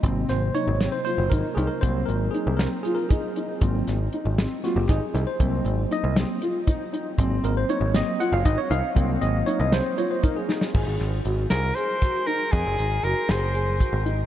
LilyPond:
<<
  \new Staff \with { instrumentName = "Soprano saxophone" } { \time 7/8 \key aes \mixolydian \tempo 4 = 118 r2. r8 | r2. r8 | r2. r8 | r2. r8 |
r2. r8 | r2. r8 | r4. bes'8 c''4 bes'8 | aes'4 bes'8 c''4. r8 | }
  \new Staff \with { instrumentName = "Tine electric piano" } { \time 7/8 \key aes \mixolydian r8 c''8 des''8. c''16 c''8 bes'8 aes'16 bes'16 | c''8 bes'8 aes'8 bes'8 aes'16 bes'16 aes'4~ | aes'8 r4. ges'16 g'16 aes'8. c''16~ | c''4 ees''8 r2 |
r8 bes'16 c''16 des''8 ees''8 ges''16 f''16 ees''16 des''16 f''8~ | f''8 ees''8 des''16 ees''16 c''8 des''16 c''16 bes'16 aes'8. | r2. r8 | r2. r8 | }
  \new Staff \with { instrumentName = "Tine electric piano" } { \time 7/8 \key aes \mixolydian <c ges bes>2.~ <c ges bes>8 | <ges bes c'>2.~ <ges bes c'>8 | <ges bes c'>8 r4. <ges bes c'>8 r4 | <ges bes c'>4. <ges bes c'>8 r4. |
<ges bes c'>4. <ges bes c'>8 r4. | <ges bes c'>2.~ <ges bes c'>8 | r2. r8 | r2. r8 | }
  \new Staff \with { instrumentName = "Grand piano" } { \time 7/8 \key aes \mixolydian c'4 ees'8 c'8 f'8 ees'8 ees'8 | c'4 ees'8 c'8 f'8 ees'8 ees'8 | c'4 ees'8 c'8 f'8 ees'8 ees'8 | c'4 ees'8 c'8 f'8 ees'8 ees'8 |
c'4 ees'8 c'8 f'8 ees'8 ees'8 | c'4 ees'8 c'8 f'8 ees'8 ees'8 | aes'4 ges'8 aes'8 aes'8 ges'8 ees'8 | aes'4 ges'8 aes'8 aes'8 ges'8 ees'8 | }
  \new Staff \with { instrumentName = "Picked electric bass" } { \clef bass \time 7/8 \key aes \mixolydian aes,,8 aes,,8 r16 aes,,8 r8 ges,,16 aes,,16 r16 c,16 r16 | c,8 aes,,8 r16 c,8 r4. r16 | aes,,8 aes,,8 r16 aes,,8 r8 ges,,16 aes,,16 r16 c,16 r16 | c,8 aes,,8 r16 c,8 r4. r16 |
aes,,8 aes,,8 r16 aes,,8 r8 ges,,16 aes,,16 r16 c,16 r16 | c,8 aes,,8 r16 c,8 r4. r16 | aes,,16 aes,,16 aes,,8 aes,,8 c,8 r4. | f,16 ges,,16 aes,,8 ges,,16 r16 ges,,4~ ges,,16 aes,,8. | }
  \new DrumStaff \with { instrumentName = "Drums" } \drummode { \time 7/8 <hh bd>8 <hh sn>8 hh8 <hh sn>8 hh8 <hh bd>8 hh8 | <hh bd>8 hh8 hh8 <hh sn>8 hh8 <hh bd>8 hh8 | <hh bd>8 <hh sn>8 hh8 <hh sn>8 <hh sn>8 <hh bd sn>8 hh8 | <hh bd>8 hh8 hh8 <hh sn>8 hh8 <hh bd>8 hh8 |
<hh bd>8 hh8 hh8 <hh sn>8 hh8 <hh bd>8 hh8 | <hh bd>8 hh8 hh8 <hh sn>8 hh8 <hh bd>8 sn16 sn16 | <cymc bd>8 <hh sn>8 hh8 <hh sn>8 hh8 <hh bd sn>8 hh8 | <hh bd>8 hh8 hh8 <hh sn>8 hh8 <hh bd>8 hh8 | }
>>